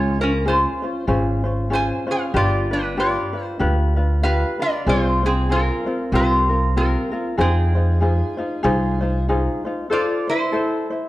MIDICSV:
0, 0, Header, 1, 4, 480
1, 0, Start_track
1, 0, Key_signature, -4, "minor"
1, 0, Tempo, 630252
1, 1782, Time_signature, 4, 2, 24, 8
1, 8444, End_track
2, 0, Start_track
2, 0, Title_t, "Resonator guitar played with a steel bar"
2, 0, Program_c, 0, 25
2, 0, Note_on_c, 0, 65, 76
2, 0, Note_on_c, 0, 73, 104
2, 139, Note_off_c, 0, 65, 0
2, 155, Note_off_c, 0, 73, 0
2, 160, Note_on_c, 0, 70, 85
2, 176, Note_on_c, 0, 61, 66
2, 337, Note_off_c, 0, 70, 0
2, 345, Note_off_c, 0, 61, 0
2, 364, Note_on_c, 0, 72, 77
2, 375, Note_on_c, 0, 65, 63
2, 802, Note_off_c, 0, 72, 0
2, 808, Note_off_c, 0, 65, 0
2, 1320, Note_on_c, 0, 72, 79
2, 1332, Note_on_c, 0, 80, 95
2, 1574, Note_off_c, 0, 72, 0
2, 1606, Note_on_c, 0, 68, 67
2, 1607, Note_off_c, 0, 80, 0
2, 1612, Note_on_c, 0, 77, 85
2, 1780, Note_off_c, 0, 68, 0
2, 1798, Note_off_c, 0, 77, 0
2, 1800, Note_on_c, 0, 65, 74
2, 1801, Note_on_c, 0, 74, 96
2, 2054, Note_off_c, 0, 65, 0
2, 2080, Note_on_c, 0, 71, 81
2, 2081, Note_off_c, 0, 74, 0
2, 2086, Note_on_c, 0, 62, 63
2, 2260, Note_off_c, 0, 62, 0
2, 2276, Note_off_c, 0, 71, 0
2, 2283, Note_on_c, 0, 74, 73
2, 2286, Note_on_c, 0, 65, 55
2, 2618, Note_off_c, 0, 74, 0
2, 2618, Note_on_c, 0, 72, 73
2, 2722, Note_off_c, 0, 72, 0
2, 2724, Note_off_c, 0, 65, 0
2, 3225, Note_on_c, 0, 77, 99
2, 3233, Note_on_c, 0, 71, 78
2, 3490, Note_off_c, 0, 71, 0
2, 3514, Note_off_c, 0, 77, 0
2, 3518, Note_on_c, 0, 74, 91
2, 3524, Note_on_c, 0, 65, 68
2, 3699, Note_off_c, 0, 65, 0
2, 3715, Note_off_c, 0, 74, 0
2, 3726, Note_on_c, 0, 72, 95
2, 3727, Note_on_c, 0, 65, 80
2, 3978, Note_off_c, 0, 65, 0
2, 4004, Note_off_c, 0, 72, 0
2, 4004, Note_on_c, 0, 68, 88
2, 4011, Note_on_c, 0, 60, 67
2, 4183, Note_off_c, 0, 60, 0
2, 4198, Note_off_c, 0, 68, 0
2, 4203, Note_on_c, 0, 70, 88
2, 4207, Note_on_c, 0, 65, 66
2, 4645, Note_off_c, 0, 65, 0
2, 4686, Note_on_c, 0, 65, 76
2, 4687, Note_off_c, 0, 70, 0
2, 4688, Note_on_c, 0, 72, 96
2, 5125, Note_off_c, 0, 65, 0
2, 5158, Note_on_c, 0, 65, 65
2, 5160, Note_on_c, 0, 70, 80
2, 5169, Note_off_c, 0, 72, 0
2, 5600, Note_off_c, 0, 65, 0
2, 5640, Note_off_c, 0, 70, 0
2, 5640, Note_on_c, 0, 60, 64
2, 5643, Note_on_c, 0, 68, 84
2, 7041, Note_off_c, 0, 60, 0
2, 7042, Note_off_c, 0, 68, 0
2, 7559, Note_on_c, 0, 74, 90
2, 7566, Note_on_c, 0, 65, 72
2, 7817, Note_off_c, 0, 65, 0
2, 7837, Note_off_c, 0, 74, 0
2, 7841, Note_on_c, 0, 72, 91
2, 7850, Note_on_c, 0, 64, 67
2, 8444, Note_off_c, 0, 64, 0
2, 8444, Note_off_c, 0, 72, 0
2, 8444, End_track
3, 0, Start_track
3, 0, Title_t, "Ukulele"
3, 0, Program_c, 1, 24
3, 0, Note_on_c, 1, 61, 80
3, 0, Note_on_c, 1, 65, 77
3, 0, Note_on_c, 1, 68, 77
3, 142, Note_off_c, 1, 68, 0
3, 144, Note_off_c, 1, 61, 0
3, 145, Note_off_c, 1, 65, 0
3, 149, Note_on_c, 1, 72, 46
3, 156, Note_on_c, 1, 65, 44
3, 158, Note_on_c, 1, 61, 41
3, 345, Note_off_c, 1, 61, 0
3, 345, Note_off_c, 1, 72, 0
3, 345, Note_on_c, 1, 68, 54
3, 348, Note_off_c, 1, 65, 0
3, 354, Note_on_c, 1, 61, 56
3, 358, Note_on_c, 1, 65, 57
3, 361, Note_on_c, 1, 72, 58
3, 616, Note_off_c, 1, 72, 0
3, 625, Note_off_c, 1, 68, 0
3, 625, Note_on_c, 1, 72, 47
3, 628, Note_off_c, 1, 65, 0
3, 630, Note_off_c, 1, 61, 0
3, 637, Note_on_c, 1, 65, 44
3, 644, Note_on_c, 1, 61, 40
3, 812, Note_off_c, 1, 61, 0
3, 815, Note_off_c, 1, 65, 0
3, 817, Note_off_c, 1, 72, 0
3, 817, Note_on_c, 1, 68, 74
3, 821, Note_on_c, 1, 61, 80
3, 824, Note_on_c, 1, 65, 92
3, 826, Note_on_c, 1, 72, 86
3, 1085, Note_off_c, 1, 72, 0
3, 1094, Note_on_c, 1, 72, 57
3, 1095, Note_off_c, 1, 65, 0
3, 1100, Note_off_c, 1, 61, 0
3, 1101, Note_off_c, 1, 68, 0
3, 1104, Note_on_c, 1, 65, 48
3, 1109, Note_on_c, 1, 61, 50
3, 1288, Note_off_c, 1, 61, 0
3, 1295, Note_on_c, 1, 68, 59
3, 1297, Note_off_c, 1, 65, 0
3, 1297, Note_off_c, 1, 72, 0
3, 1297, Note_on_c, 1, 61, 61
3, 1306, Note_on_c, 1, 65, 59
3, 1311, Note_on_c, 1, 72, 67
3, 1565, Note_off_c, 1, 72, 0
3, 1571, Note_off_c, 1, 65, 0
3, 1574, Note_off_c, 1, 61, 0
3, 1574, Note_on_c, 1, 72, 53
3, 1580, Note_off_c, 1, 68, 0
3, 1581, Note_on_c, 1, 65, 47
3, 1583, Note_on_c, 1, 61, 44
3, 1777, Note_off_c, 1, 65, 0
3, 1777, Note_off_c, 1, 72, 0
3, 1779, Note_off_c, 1, 61, 0
3, 1780, Note_on_c, 1, 67, 78
3, 1782, Note_on_c, 1, 62, 73
3, 1786, Note_on_c, 1, 65, 78
3, 1791, Note_on_c, 1, 71, 75
3, 2054, Note_off_c, 1, 71, 0
3, 2061, Note_off_c, 1, 65, 0
3, 2063, Note_off_c, 1, 67, 0
3, 2063, Note_on_c, 1, 71, 51
3, 2064, Note_off_c, 1, 62, 0
3, 2070, Note_on_c, 1, 65, 45
3, 2077, Note_on_c, 1, 62, 41
3, 2255, Note_off_c, 1, 62, 0
3, 2262, Note_off_c, 1, 65, 0
3, 2262, Note_off_c, 1, 71, 0
3, 2264, Note_on_c, 1, 62, 59
3, 2265, Note_on_c, 1, 67, 58
3, 2271, Note_on_c, 1, 65, 64
3, 2274, Note_on_c, 1, 71, 61
3, 2527, Note_off_c, 1, 71, 0
3, 2536, Note_off_c, 1, 65, 0
3, 2537, Note_on_c, 1, 71, 51
3, 2541, Note_off_c, 1, 62, 0
3, 2545, Note_off_c, 1, 67, 0
3, 2545, Note_on_c, 1, 65, 49
3, 2551, Note_on_c, 1, 62, 44
3, 2730, Note_off_c, 1, 62, 0
3, 2733, Note_off_c, 1, 65, 0
3, 2737, Note_on_c, 1, 67, 70
3, 2739, Note_off_c, 1, 71, 0
3, 2739, Note_on_c, 1, 62, 78
3, 2742, Note_on_c, 1, 65, 82
3, 2749, Note_on_c, 1, 71, 89
3, 3008, Note_off_c, 1, 71, 0
3, 3014, Note_off_c, 1, 65, 0
3, 3018, Note_on_c, 1, 71, 53
3, 3021, Note_off_c, 1, 67, 0
3, 3022, Note_off_c, 1, 62, 0
3, 3023, Note_on_c, 1, 65, 53
3, 3036, Note_on_c, 1, 62, 49
3, 3219, Note_off_c, 1, 62, 0
3, 3219, Note_off_c, 1, 71, 0
3, 3222, Note_off_c, 1, 65, 0
3, 3222, Note_on_c, 1, 67, 60
3, 3228, Note_on_c, 1, 62, 61
3, 3232, Note_on_c, 1, 65, 62
3, 3237, Note_on_c, 1, 71, 70
3, 3490, Note_off_c, 1, 71, 0
3, 3494, Note_off_c, 1, 65, 0
3, 3499, Note_on_c, 1, 71, 52
3, 3503, Note_off_c, 1, 62, 0
3, 3503, Note_on_c, 1, 65, 50
3, 3504, Note_off_c, 1, 67, 0
3, 3512, Note_on_c, 1, 62, 45
3, 3700, Note_off_c, 1, 71, 0
3, 3702, Note_off_c, 1, 65, 0
3, 3706, Note_off_c, 1, 62, 0
3, 3708, Note_on_c, 1, 68, 78
3, 3710, Note_on_c, 1, 60, 80
3, 3712, Note_on_c, 1, 65, 80
3, 3713, Note_on_c, 1, 72, 84
3, 3974, Note_off_c, 1, 72, 0
3, 3984, Note_off_c, 1, 60, 0
3, 3984, Note_off_c, 1, 65, 0
3, 3984, Note_on_c, 1, 72, 52
3, 3987, Note_off_c, 1, 68, 0
3, 3993, Note_on_c, 1, 60, 41
3, 3993, Note_on_c, 1, 65, 50
3, 4178, Note_off_c, 1, 60, 0
3, 4182, Note_off_c, 1, 72, 0
3, 4182, Note_on_c, 1, 68, 60
3, 4187, Note_off_c, 1, 65, 0
3, 4187, Note_on_c, 1, 60, 64
3, 4196, Note_on_c, 1, 65, 63
3, 4197, Note_on_c, 1, 72, 68
3, 4456, Note_off_c, 1, 72, 0
3, 4459, Note_off_c, 1, 65, 0
3, 4463, Note_off_c, 1, 60, 0
3, 4464, Note_off_c, 1, 68, 0
3, 4465, Note_on_c, 1, 72, 52
3, 4468, Note_on_c, 1, 65, 49
3, 4472, Note_on_c, 1, 60, 43
3, 4663, Note_off_c, 1, 72, 0
3, 4664, Note_off_c, 1, 65, 0
3, 4667, Note_off_c, 1, 60, 0
3, 4670, Note_on_c, 1, 67, 78
3, 4675, Note_on_c, 1, 60, 87
3, 4680, Note_on_c, 1, 65, 78
3, 4683, Note_on_c, 1, 70, 82
3, 4935, Note_off_c, 1, 70, 0
3, 4940, Note_off_c, 1, 65, 0
3, 4944, Note_on_c, 1, 70, 52
3, 4948, Note_off_c, 1, 67, 0
3, 4950, Note_on_c, 1, 65, 43
3, 4951, Note_off_c, 1, 60, 0
3, 4960, Note_on_c, 1, 60, 42
3, 5143, Note_off_c, 1, 70, 0
3, 5145, Note_off_c, 1, 60, 0
3, 5145, Note_off_c, 1, 65, 0
3, 5151, Note_on_c, 1, 67, 55
3, 5154, Note_on_c, 1, 60, 62
3, 5157, Note_on_c, 1, 65, 66
3, 5164, Note_on_c, 1, 70, 68
3, 5410, Note_off_c, 1, 70, 0
3, 5419, Note_off_c, 1, 65, 0
3, 5419, Note_on_c, 1, 70, 55
3, 5428, Note_off_c, 1, 60, 0
3, 5428, Note_on_c, 1, 65, 53
3, 5429, Note_off_c, 1, 67, 0
3, 5437, Note_on_c, 1, 60, 49
3, 5616, Note_off_c, 1, 65, 0
3, 5617, Note_on_c, 1, 68, 79
3, 5618, Note_off_c, 1, 60, 0
3, 5620, Note_off_c, 1, 70, 0
3, 5621, Note_on_c, 1, 63, 80
3, 5625, Note_on_c, 1, 72, 89
3, 5626, Note_on_c, 1, 65, 78
3, 5893, Note_off_c, 1, 72, 0
3, 5901, Note_off_c, 1, 65, 0
3, 5902, Note_off_c, 1, 68, 0
3, 5902, Note_on_c, 1, 72, 53
3, 5904, Note_off_c, 1, 63, 0
3, 5910, Note_on_c, 1, 65, 46
3, 5916, Note_on_c, 1, 63, 41
3, 6095, Note_off_c, 1, 63, 0
3, 6098, Note_on_c, 1, 68, 58
3, 6099, Note_off_c, 1, 65, 0
3, 6101, Note_off_c, 1, 72, 0
3, 6105, Note_on_c, 1, 63, 59
3, 6108, Note_on_c, 1, 65, 68
3, 6112, Note_on_c, 1, 72, 63
3, 6366, Note_off_c, 1, 72, 0
3, 6375, Note_off_c, 1, 65, 0
3, 6375, Note_on_c, 1, 72, 55
3, 6382, Note_off_c, 1, 68, 0
3, 6384, Note_on_c, 1, 65, 55
3, 6386, Note_off_c, 1, 63, 0
3, 6395, Note_on_c, 1, 63, 45
3, 6571, Note_off_c, 1, 63, 0
3, 6572, Note_on_c, 1, 68, 82
3, 6573, Note_off_c, 1, 65, 0
3, 6578, Note_off_c, 1, 72, 0
3, 6580, Note_on_c, 1, 63, 96
3, 6582, Note_on_c, 1, 65, 93
3, 6588, Note_on_c, 1, 72, 97
3, 6851, Note_off_c, 1, 72, 0
3, 6859, Note_off_c, 1, 68, 0
3, 6860, Note_off_c, 1, 65, 0
3, 6860, Note_on_c, 1, 72, 57
3, 6863, Note_off_c, 1, 63, 0
3, 6869, Note_on_c, 1, 65, 50
3, 6877, Note_on_c, 1, 63, 47
3, 7060, Note_off_c, 1, 72, 0
3, 7065, Note_off_c, 1, 65, 0
3, 7069, Note_off_c, 1, 63, 0
3, 7072, Note_on_c, 1, 68, 65
3, 7077, Note_on_c, 1, 63, 74
3, 7082, Note_on_c, 1, 72, 72
3, 7083, Note_on_c, 1, 65, 65
3, 7339, Note_off_c, 1, 72, 0
3, 7348, Note_on_c, 1, 72, 54
3, 7349, Note_off_c, 1, 65, 0
3, 7349, Note_off_c, 1, 68, 0
3, 7352, Note_off_c, 1, 63, 0
3, 7358, Note_on_c, 1, 65, 55
3, 7361, Note_on_c, 1, 63, 51
3, 7535, Note_off_c, 1, 65, 0
3, 7538, Note_off_c, 1, 72, 0
3, 7538, Note_on_c, 1, 69, 73
3, 7542, Note_off_c, 1, 63, 0
3, 7545, Note_on_c, 1, 65, 75
3, 7548, Note_on_c, 1, 72, 86
3, 7815, Note_off_c, 1, 72, 0
3, 7822, Note_off_c, 1, 69, 0
3, 7825, Note_on_c, 1, 72, 51
3, 7826, Note_off_c, 1, 65, 0
3, 7842, Note_on_c, 1, 64, 44
3, 8009, Note_off_c, 1, 72, 0
3, 8011, Note_off_c, 1, 64, 0
3, 8012, Note_on_c, 1, 69, 70
3, 8020, Note_on_c, 1, 64, 73
3, 8028, Note_on_c, 1, 72, 81
3, 8295, Note_off_c, 1, 72, 0
3, 8299, Note_off_c, 1, 69, 0
3, 8303, Note_off_c, 1, 64, 0
3, 8305, Note_on_c, 1, 72, 55
3, 8317, Note_on_c, 1, 64, 39
3, 8444, Note_off_c, 1, 64, 0
3, 8444, Note_off_c, 1, 72, 0
3, 8444, End_track
4, 0, Start_track
4, 0, Title_t, "Upright bass"
4, 0, Program_c, 2, 32
4, 0, Note_on_c, 2, 37, 86
4, 489, Note_off_c, 2, 37, 0
4, 821, Note_on_c, 2, 32, 88
4, 1445, Note_off_c, 2, 32, 0
4, 1782, Note_on_c, 2, 31, 86
4, 2406, Note_off_c, 2, 31, 0
4, 2744, Note_on_c, 2, 38, 92
4, 3368, Note_off_c, 2, 38, 0
4, 3706, Note_on_c, 2, 36, 89
4, 4329, Note_off_c, 2, 36, 0
4, 4662, Note_on_c, 2, 36, 96
4, 5286, Note_off_c, 2, 36, 0
4, 5624, Note_on_c, 2, 41, 95
4, 6248, Note_off_c, 2, 41, 0
4, 6584, Note_on_c, 2, 36, 88
4, 7208, Note_off_c, 2, 36, 0
4, 8444, End_track
0, 0, End_of_file